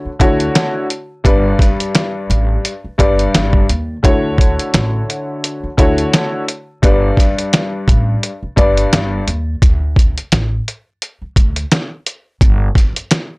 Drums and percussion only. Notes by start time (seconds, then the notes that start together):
0.20 kick, closed hi-hat
0.40 closed hi-hat
0.55 snare, closed hi-hat
0.90 closed hi-hat
1.25 kick, closed hi-hat
1.59 kick, snare, closed hi-hat
1.80 closed hi-hat
1.95 snare, closed hi-hat
2.31 closed hi-hat
2.65 closed hi-hat
2.99 kick, closed hi-hat
3.19 closed hi-hat
3.34 snare, closed hi-hat
3.53 kick
3.69 closed hi-hat
4.04 kick, closed hi-hat
4.38 kick, closed hi-hat
4.59 closed hi-hat
4.74 snare, closed hi-hat
5.10 closed hi-hat
5.44 closed hi-hat
5.78 kick, closed hi-hat
5.98 closed hi-hat
6.13 snare, closed hi-hat
6.48 closed hi-hat
6.83 kick, closed hi-hat
7.17 kick, snare, closed hi-hat
7.38 closed hi-hat
7.53 snare, closed hi-hat
7.88 kick, closed hi-hat
8.23 closed hi-hat
8.57 kick, closed hi-hat
8.77 closed hi-hat
8.93 snare, closed hi-hat
9.28 closed hi-hat
9.62 kick, closed hi-hat
9.96 kick, closed hi-hat
10.18 closed hi-hat
10.32 snare, closed hi-hat
10.68 closed hi-hat
11.02 closed hi-hat
11.36 kick, closed hi-hat
11.56 closed hi-hat
11.72 snare, closed hi-hat
12.06 closed hi-hat
12.41 kick, closed hi-hat
12.75 kick, snare, closed hi-hat
12.96 closed hi-hat
13.11 snare, closed hi-hat